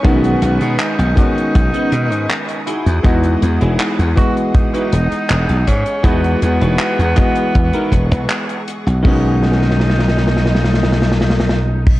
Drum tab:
CC |--------------------------------|--------------------------------|--------------------------------|x-----------------------------x-|
HH |x-x-x-x-x-x-x-x-x-x-x-x-x-x-x-x-|x-x-x-x-x-x-x-x-x-x-x-x-x-x-x-x-|x-x-x-x-x-x-x-x-x-x-x-x-x-x-x-x-|--------------------------------|
CP |--------x---------------x-------|--------x---------------x-------|--------x---x-----------x-------|--------------------------------|
SD |--------------------------------|--------------------------------|--------------------------------|----ooooooooooooooooooooooo-----|
BD |o-----------o---o---------------|o-----------o---o-----------o---|o-----------o---o---o-----------|o-----------------------------o-|